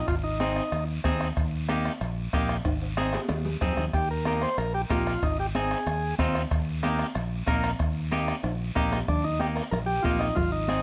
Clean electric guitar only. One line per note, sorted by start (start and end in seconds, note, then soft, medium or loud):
0.40 0.63 C4 medium
0.40 0.63 D#4 medium
0.40 0.63 G#4 medium
1.04 1.27 C4 medium
1.04 1.27 D#4 medium
1.04 1.27 G#4 loud
1.69 1.91 A#3 medium
1.69 1.91 D#4 medium
1.69 1.92 G4 medium
2.34 2.56 A#3 medium
2.34 2.56 D#4 medium
2.34 2.56 G4 medium
2.97 3.20 C4 medium
2.97 3.20 D#4 medium
2.97 3.20 G#4 medium
3.62 3.84 C4 medium
3.62 3.84 D#4 medium
3.62 3.84 G#4 loud
4.26 4.49 A#3 medium
4.26 4.49 D#4 medium
4.26 4.49 G4 medium
4.90 5.12 A#3 medium
4.90 5.13 D#4 medium
4.90 5.13 G4 medium
5.55 5.77 C4 medium
5.55 5.78 D#4 medium
5.55 5.78 G#4 medium
6.19 6.42 C4 medium
6.19 6.41 D#4 medium
6.19 6.42 F4 medium
6.83 7.06 A#3 medium
6.83 7.06 D#4 medium
6.83 7.06 G4 medium
7.47 7.70 A#3 medium
7.47 7.70 D#4 medium
7.47 7.70 A#4 loud
8.12 8.34 A#3 medium
8.12 8.34 D#4 medium
8.12 8.35 G4 loud
8.75 8.98 A#3 medium
8.75 8.98 D#4 medium
8.75 8.99 G4 medium
9.40 9.63 A#3 medium
9.40 9.63 D#4 medium
9.40 9.63 G4 medium
10.04 10.27 A#3 medium
10.04 10.27 D#4 medium
10.04 10.27 G4 medium
10.68 10.82 C4 medium
10.68 10.82 D#4 medium
10.68 10.82 G#4 medium